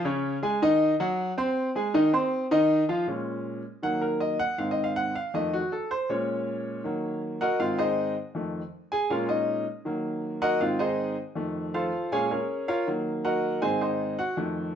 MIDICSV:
0, 0, Header, 1, 2, 480
1, 0, Start_track
1, 0, Key_signature, -5, "minor"
1, 0, Tempo, 376884
1, 66, Time_signature, 4, 2, 24, 8
1, 18787, End_track
2, 0, Start_track
2, 0, Title_t, "Grand piano"
2, 0, Program_c, 0, 0
2, 59, Note_on_c, 0, 49, 85
2, 68, Note_on_c, 0, 61, 81
2, 69, Note_on_c, 0, 73, 80
2, 457, Note_off_c, 0, 49, 0
2, 461, Note_off_c, 0, 61, 0
2, 462, Note_off_c, 0, 73, 0
2, 541, Note_on_c, 0, 56, 82
2, 544, Note_on_c, 0, 68, 77
2, 551, Note_on_c, 0, 80, 87
2, 741, Note_off_c, 0, 56, 0
2, 742, Note_off_c, 0, 68, 0
2, 747, Note_off_c, 0, 80, 0
2, 791, Note_on_c, 0, 51, 93
2, 793, Note_on_c, 0, 63, 94
2, 798, Note_on_c, 0, 75, 102
2, 1184, Note_off_c, 0, 51, 0
2, 1186, Note_off_c, 0, 63, 0
2, 1189, Note_off_c, 0, 75, 0
2, 1272, Note_on_c, 0, 54, 98
2, 1277, Note_on_c, 0, 66, 89
2, 1280, Note_on_c, 0, 78, 88
2, 1665, Note_off_c, 0, 54, 0
2, 1668, Note_off_c, 0, 66, 0
2, 1670, Note_off_c, 0, 78, 0
2, 1752, Note_on_c, 0, 60, 86
2, 1757, Note_on_c, 0, 72, 82
2, 1759, Note_on_c, 0, 84, 93
2, 2146, Note_off_c, 0, 60, 0
2, 2149, Note_off_c, 0, 72, 0
2, 2150, Note_off_c, 0, 84, 0
2, 2233, Note_on_c, 0, 56, 72
2, 2240, Note_on_c, 0, 68, 85
2, 2240, Note_on_c, 0, 80, 71
2, 2430, Note_off_c, 0, 56, 0
2, 2434, Note_off_c, 0, 68, 0
2, 2434, Note_off_c, 0, 80, 0
2, 2472, Note_on_c, 0, 51, 98
2, 2475, Note_on_c, 0, 63, 91
2, 2478, Note_on_c, 0, 75, 86
2, 2669, Note_off_c, 0, 51, 0
2, 2671, Note_off_c, 0, 63, 0
2, 2673, Note_off_c, 0, 75, 0
2, 2715, Note_on_c, 0, 60, 72
2, 2722, Note_on_c, 0, 72, 84
2, 2722, Note_on_c, 0, 84, 83
2, 3109, Note_off_c, 0, 60, 0
2, 3113, Note_off_c, 0, 72, 0
2, 3113, Note_off_c, 0, 84, 0
2, 3198, Note_on_c, 0, 51, 102
2, 3201, Note_on_c, 0, 63, 97
2, 3206, Note_on_c, 0, 75, 99
2, 3591, Note_off_c, 0, 51, 0
2, 3593, Note_off_c, 0, 63, 0
2, 3596, Note_off_c, 0, 75, 0
2, 3676, Note_on_c, 0, 53, 74
2, 3680, Note_on_c, 0, 65, 82
2, 3685, Note_on_c, 0, 77, 80
2, 3873, Note_off_c, 0, 53, 0
2, 3875, Note_off_c, 0, 65, 0
2, 3878, Note_off_c, 0, 77, 0
2, 3911, Note_on_c, 0, 46, 56
2, 3918, Note_on_c, 0, 56, 48
2, 3926, Note_on_c, 0, 61, 58
2, 4599, Note_off_c, 0, 46, 0
2, 4602, Note_off_c, 0, 56, 0
2, 4606, Note_off_c, 0, 61, 0
2, 4872, Note_on_c, 0, 51, 60
2, 4879, Note_on_c, 0, 54, 52
2, 4882, Note_on_c, 0, 78, 86
2, 4889, Note_on_c, 0, 58, 62
2, 5113, Note_off_c, 0, 78, 0
2, 5114, Note_on_c, 0, 70, 70
2, 5349, Note_off_c, 0, 70, 0
2, 5355, Note_on_c, 0, 75, 86
2, 5560, Note_off_c, 0, 51, 0
2, 5563, Note_off_c, 0, 54, 0
2, 5569, Note_off_c, 0, 58, 0
2, 5590, Note_off_c, 0, 75, 0
2, 5597, Note_on_c, 0, 78, 113
2, 5831, Note_off_c, 0, 78, 0
2, 5833, Note_on_c, 0, 44, 58
2, 5838, Note_on_c, 0, 77, 75
2, 5842, Note_on_c, 0, 51, 51
2, 5850, Note_on_c, 0, 60, 57
2, 5994, Note_off_c, 0, 77, 0
2, 6000, Note_on_c, 0, 75, 85
2, 6155, Note_off_c, 0, 75, 0
2, 6161, Note_on_c, 0, 77, 84
2, 6316, Note_off_c, 0, 77, 0
2, 6320, Note_on_c, 0, 78, 105
2, 6520, Note_off_c, 0, 44, 0
2, 6525, Note_off_c, 0, 51, 0
2, 6529, Note_off_c, 0, 60, 0
2, 6553, Note_off_c, 0, 78, 0
2, 6565, Note_on_c, 0, 77, 88
2, 6796, Note_off_c, 0, 77, 0
2, 6801, Note_on_c, 0, 41, 57
2, 6809, Note_on_c, 0, 51, 54
2, 6809, Note_on_c, 0, 75, 81
2, 6817, Note_on_c, 0, 57, 63
2, 7038, Note_off_c, 0, 75, 0
2, 7049, Note_on_c, 0, 66, 86
2, 7120, Note_off_c, 0, 41, 0
2, 7124, Note_off_c, 0, 51, 0
2, 7128, Note_off_c, 0, 57, 0
2, 7277, Note_off_c, 0, 66, 0
2, 7287, Note_on_c, 0, 69, 73
2, 7517, Note_off_c, 0, 69, 0
2, 7526, Note_on_c, 0, 72, 91
2, 7756, Note_off_c, 0, 72, 0
2, 7759, Note_on_c, 0, 46, 61
2, 7763, Note_on_c, 0, 56, 50
2, 7768, Note_on_c, 0, 73, 71
2, 7775, Note_on_c, 0, 61, 63
2, 8671, Note_off_c, 0, 46, 0
2, 8673, Note_off_c, 0, 56, 0
2, 8679, Note_off_c, 0, 61, 0
2, 8712, Note_on_c, 0, 51, 56
2, 8725, Note_on_c, 0, 54, 55
2, 8728, Note_on_c, 0, 58, 59
2, 9152, Note_off_c, 0, 73, 0
2, 9399, Note_off_c, 0, 51, 0
2, 9405, Note_off_c, 0, 54, 0
2, 9407, Note_off_c, 0, 58, 0
2, 9436, Note_on_c, 0, 78, 94
2, 9443, Note_on_c, 0, 70, 80
2, 9444, Note_on_c, 0, 75, 73
2, 9445, Note_on_c, 0, 66, 82
2, 9670, Note_off_c, 0, 78, 0
2, 9670, Note_on_c, 0, 44, 60
2, 9674, Note_off_c, 0, 66, 0
2, 9674, Note_off_c, 0, 70, 0
2, 9674, Note_off_c, 0, 75, 0
2, 9676, Note_on_c, 0, 77, 92
2, 9677, Note_on_c, 0, 51, 56
2, 9684, Note_on_c, 0, 60, 57
2, 9684, Note_on_c, 0, 65, 68
2, 9909, Note_off_c, 0, 77, 0
2, 9914, Note_off_c, 0, 65, 0
2, 9916, Note_on_c, 0, 75, 91
2, 9920, Note_on_c, 0, 72, 68
2, 9921, Note_on_c, 0, 63, 63
2, 9921, Note_on_c, 0, 68, 65
2, 10357, Note_off_c, 0, 44, 0
2, 10360, Note_off_c, 0, 51, 0
2, 10362, Note_off_c, 0, 75, 0
2, 10364, Note_off_c, 0, 60, 0
2, 10365, Note_off_c, 0, 63, 0
2, 10365, Note_off_c, 0, 68, 0
2, 10365, Note_off_c, 0, 72, 0
2, 10633, Note_on_c, 0, 41, 50
2, 10640, Note_on_c, 0, 51, 50
2, 10646, Note_on_c, 0, 57, 58
2, 10953, Note_off_c, 0, 41, 0
2, 10957, Note_off_c, 0, 51, 0
2, 10960, Note_off_c, 0, 57, 0
2, 11357, Note_on_c, 0, 80, 97
2, 11367, Note_on_c, 0, 68, 85
2, 11586, Note_on_c, 0, 46, 55
2, 11589, Note_off_c, 0, 80, 0
2, 11593, Note_on_c, 0, 56, 51
2, 11594, Note_off_c, 0, 68, 0
2, 11595, Note_on_c, 0, 77, 76
2, 11599, Note_on_c, 0, 73, 59
2, 11600, Note_on_c, 0, 65, 69
2, 11600, Note_on_c, 0, 70, 67
2, 11603, Note_on_c, 0, 61, 62
2, 11828, Note_off_c, 0, 77, 0
2, 11829, Note_off_c, 0, 73, 0
2, 11829, Note_on_c, 0, 75, 82
2, 11830, Note_off_c, 0, 65, 0
2, 11830, Note_off_c, 0, 70, 0
2, 11836, Note_on_c, 0, 63, 62
2, 12273, Note_off_c, 0, 46, 0
2, 12277, Note_off_c, 0, 56, 0
2, 12277, Note_off_c, 0, 75, 0
2, 12281, Note_off_c, 0, 63, 0
2, 12282, Note_off_c, 0, 61, 0
2, 12545, Note_on_c, 0, 51, 56
2, 12554, Note_on_c, 0, 54, 52
2, 12561, Note_on_c, 0, 58, 64
2, 13268, Note_on_c, 0, 78, 103
2, 13269, Note_on_c, 0, 75, 95
2, 13271, Note_on_c, 0, 70, 87
2, 13272, Note_on_c, 0, 66, 81
2, 13460, Note_off_c, 0, 51, 0
2, 13465, Note_off_c, 0, 54, 0
2, 13468, Note_off_c, 0, 58, 0
2, 13500, Note_on_c, 0, 44, 56
2, 13503, Note_off_c, 0, 75, 0
2, 13503, Note_off_c, 0, 78, 0
2, 13504, Note_off_c, 0, 70, 0
2, 13505, Note_off_c, 0, 66, 0
2, 13508, Note_on_c, 0, 77, 76
2, 13509, Note_on_c, 0, 51, 53
2, 13516, Note_on_c, 0, 65, 66
2, 13517, Note_on_c, 0, 60, 62
2, 13743, Note_off_c, 0, 77, 0
2, 13746, Note_on_c, 0, 75, 86
2, 13747, Note_off_c, 0, 65, 0
2, 13753, Note_on_c, 0, 63, 70
2, 13756, Note_on_c, 0, 68, 70
2, 13756, Note_on_c, 0, 72, 72
2, 14189, Note_off_c, 0, 44, 0
2, 14194, Note_off_c, 0, 51, 0
2, 14195, Note_off_c, 0, 75, 0
2, 14198, Note_off_c, 0, 60, 0
2, 14199, Note_off_c, 0, 63, 0
2, 14200, Note_off_c, 0, 68, 0
2, 14200, Note_off_c, 0, 72, 0
2, 14461, Note_on_c, 0, 41, 53
2, 14464, Note_on_c, 0, 51, 52
2, 14472, Note_on_c, 0, 57, 60
2, 14956, Note_on_c, 0, 69, 66
2, 14956, Note_on_c, 0, 77, 78
2, 14958, Note_on_c, 0, 65, 63
2, 14958, Note_on_c, 0, 72, 62
2, 15149, Note_off_c, 0, 41, 0
2, 15151, Note_off_c, 0, 51, 0
2, 15155, Note_off_c, 0, 57, 0
2, 15399, Note_off_c, 0, 69, 0
2, 15399, Note_off_c, 0, 77, 0
2, 15401, Note_off_c, 0, 65, 0
2, 15401, Note_off_c, 0, 72, 0
2, 15430, Note_on_c, 0, 46, 56
2, 15440, Note_on_c, 0, 56, 49
2, 15440, Note_on_c, 0, 80, 91
2, 15445, Note_on_c, 0, 68, 73
2, 15445, Note_on_c, 0, 73, 79
2, 15446, Note_on_c, 0, 61, 59
2, 15447, Note_on_c, 0, 77, 75
2, 15662, Note_off_c, 0, 73, 0
2, 15664, Note_off_c, 0, 61, 0
2, 15664, Note_off_c, 0, 68, 0
2, 15668, Note_off_c, 0, 80, 0
2, 15672, Note_off_c, 0, 77, 0
2, 15681, Note_on_c, 0, 73, 65
2, 15683, Note_on_c, 0, 61, 53
2, 15684, Note_on_c, 0, 68, 53
2, 15684, Note_on_c, 0, 70, 53
2, 15749, Note_off_c, 0, 46, 0
2, 15754, Note_off_c, 0, 56, 0
2, 16122, Note_off_c, 0, 73, 0
2, 16123, Note_off_c, 0, 61, 0
2, 16123, Note_off_c, 0, 68, 0
2, 16124, Note_off_c, 0, 70, 0
2, 16152, Note_on_c, 0, 77, 90
2, 16156, Note_on_c, 0, 73, 76
2, 16158, Note_on_c, 0, 70, 70
2, 16159, Note_on_c, 0, 65, 74
2, 16383, Note_off_c, 0, 77, 0
2, 16385, Note_off_c, 0, 73, 0
2, 16386, Note_off_c, 0, 70, 0
2, 16387, Note_off_c, 0, 65, 0
2, 16388, Note_on_c, 0, 51, 57
2, 16397, Note_on_c, 0, 54, 54
2, 16403, Note_on_c, 0, 58, 66
2, 16870, Note_on_c, 0, 78, 88
2, 16874, Note_on_c, 0, 66, 73
2, 16876, Note_on_c, 0, 75, 66
2, 16877, Note_on_c, 0, 70, 72
2, 17299, Note_off_c, 0, 51, 0
2, 17304, Note_off_c, 0, 54, 0
2, 17307, Note_off_c, 0, 58, 0
2, 17315, Note_off_c, 0, 78, 0
2, 17317, Note_off_c, 0, 66, 0
2, 17318, Note_off_c, 0, 75, 0
2, 17319, Note_off_c, 0, 70, 0
2, 17338, Note_on_c, 0, 44, 61
2, 17344, Note_on_c, 0, 51, 52
2, 17345, Note_on_c, 0, 80, 86
2, 17348, Note_on_c, 0, 75, 74
2, 17349, Note_on_c, 0, 68, 69
2, 17349, Note_on_c, 0, 72, 81
2, 17354, Note_on_c, 0, 60, 60
2, 17574, Note_off_c, 0, 75, 0
2, 17575, Note_off_c, 0, 68, 0
2, 17577, Note_off_c, 0, 72, 0
2, 17579, Note_off_c, 0, 80, 0
2, 17593, Note_on_c, 0, 75, 69
2, 17594, Note_on_c, 0, 68, 50
2, 17596, Note_on_c, 0, 72, 57
2, 17597, Note_on_c, 0, 63, 54
2, 18025, Note_off_c, 0, 44, 0
2, 18029, Note_off_c, 0, 51, 0
2, 18033, Note_off_c, 0, 60, 0
2, 18036, Note_off_c, 0, 75, 0
2, 18037, Note_off_c, 0, 68, 0
2, 18037, Note_off_c, 0, 72, 0
2, 18038, Note_off_c, 0, 63, 0
2, 18067, Note_on_c, 0, 78, 86
2, 18075, Note_on_c, 0, 66, 76
2, 18299, Note_off_c, 0, 78, 0
2, 18303, Note_off_c, 0, 66, 0
2, 18303, Note_on_c, 0, 41, 59
2, 18307, Note_on_c, 0, 51, 49
2, 18317, Note_on_c, 0, 57, 61
2, 18787, Note_off_c, 0, 41, 0
2, 18787, Note_off_c, 0, 51, 0
2, 18787, Note_off_c, 0, 57, 0
2, 18787, End_track
0, 0, End_of_file